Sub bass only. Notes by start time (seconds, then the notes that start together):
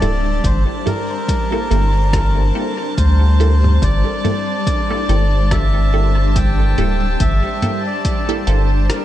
0.02 D1
0.44 G1
1.71 G1
2.98 D2
3.82 G1
5.09 G1
6.78 D1
7.20 G1
8.47 G1